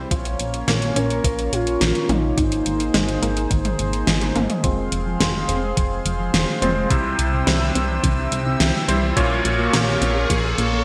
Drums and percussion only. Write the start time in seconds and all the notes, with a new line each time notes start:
0.11 kick, closed hi-hat
0.25 closed hi-hat
0.40 closed hi-hat
0.54 closed hi-hat
0.68 snare, closed hi-hat
0.82 closed hi-hat
0.96 closed hi-hat
1.10 closed hi-hat
1.24 kick, closed hi-hat
1.39 closed hi-hat
1.53 closed hi-hat
1.67 closed hi-hat
1.81 snare, closed hi-hat
1.95 closed hi-hat
2.09 closed hi-hat, mid tom
2.38 kick, closed hi-hat
2.52 closed hi-hat
2.66 closed hi-hat
2.80 closed hi-hat
2.94 snare, closed hi-hat
3.08 closed hi-hat
3.23 closed hi-hat
3.37 closed hi-hat
3.51 kick, closed hi-hat
3.65 closed hi-hat, mid tom
3.79 closed hi-hat
3.93 closed hi-hat
4.07 snare, closed hi-hat
4.21 closed hi-hat, high tom
4.36 closed hi-hat, mid tom
4.50 closed hi-hat, mid tom
4.64 kick, closed hi-hat
4.92 closed hi-hat
5.20 snare, closed hi-hat
5.49 closed hi-hat
5.77 kick, closed hi-hat
6.06 closed hi-hat
6.34 snare, closed hi-hat
6.62 closed hi-hat, mid tom
6.90 kick, closed hi-hat
7.19 closed hi-hat
7.47 snare, closed hi-hat
7.75 closed hi-hat
8.04 kick, closed hi-hat
8.32 closed hi-hat
8.60 snare, closed hi-hat
8.89 closed hi-hat
9.17 kick, closed hi-hat
9.45 closed hi-hat
9.73 snare, closed hi-hat
10.02 closed hi-hat
10.30 kick, closed hi-hat
10.58 closed hi-hat